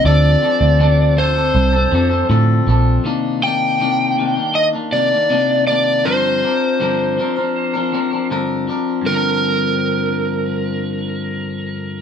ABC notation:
X:1
M:4/4
L:1/16
Q:1/4=80
K:Gm
V:1 name="Electric slide guitar"
d6 c6 z4 | z2 g6 e2 d4 d2 | c12 z4 | B16 |]
V:2 name="Clean electric guitar"
[D,F,CDA]2 [F,CDA]2 [D,F,CDA]2 [F,CDA] [CDA]2 [CDA] [F,CDA] [CDA] [D,F,CDA]2 [F,CDA]2 | [C,E,B,D]2 [C,E,B,D]2 [C,E,B,D]2 [C,E,B,D] [E,B,D]2 [E,B,D] [C,E,B,D] [E,B,D] [C,E,B,D]2 [C,E,B,D]2 | [G,,D,F,CDB]2 [F,CDB]2 [G,,D,F,CDB]2 [F,CDB] [F,CDB]2 [F,CDB] [F,CDB] [F,CDB] [G,,D,F,CDB]2 [F,CDB]2 | [G,,D,F,CDB]16 |]
V:3 name="Picked electric bass" clef=bass
D,,2 z D,,4- D,, C,,2 F,,2 A,,2 B,,,2 | z16 | z16 | z16 |]